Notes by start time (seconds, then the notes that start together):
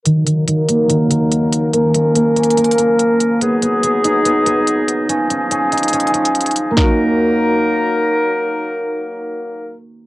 0.06 D#3 F#3 A#3 D#4 A#4, closed hi-hat
0.27 D#3, closed hi-hat
0.48 D#3, closed hi-hat
0.69 A#3, closed hi-hat
0.89 D#3, closed hi-hat
1.11 D#3, closed hi-hat
1.32 closed hi-hat
1.52 closed hi-hat
1.73 F3 A#3 C#4 A#4, closed hi-hat
1.95 A#3, closed hi-hat
2.15 A#3, closed hi-hat
2.36 C#4, closed hi-hat
2.43 closed hi-hat
2.50 closed hi-hat
2.57 A#3, closed hi-hat
2.64 closed hi-hat
2.71 closed hi-hat
2.78 A#3, closed hi-hat
2.99 closed hi-hat
3.20 closed hi-hat
3.41 F#3 B3 D#4 G#4, closed hi-hat
3.62 B3, closed hi-hat
3.83 B3, closed hi-hat
4.04 D#4, closed hi-hat
4.25 B3, closed hi-hat
4.46 B3, closed hi-hat
4.67 closed hi-hat
4.88 closed hi-hat
5.09 F3 C#4 G#4, closed hi-hat
5.30 C#4, closed hi-hat
5.51 C#4, closed hi-hat
5.72 D#4, closed hi-hat
5.78 closed hi-hat
5.83 closed hi-hat
5.88 closed hi-hat
5.93 C#4, closed hi-hat
6.00 closed hi-hat
6.07 closed hi-hat
6.14 C#4, closed hi-hat
6.25 closed hi-hat
6.35 closed hi-hat
6.41 closed hi-hat
6.46 closed hi-hat
6.51 closed hi-hat
6.56 closed hi-hat
6.71 A#3
6.77 F#3 A#3 D#4 A#4, kick, snare
6.83 F#4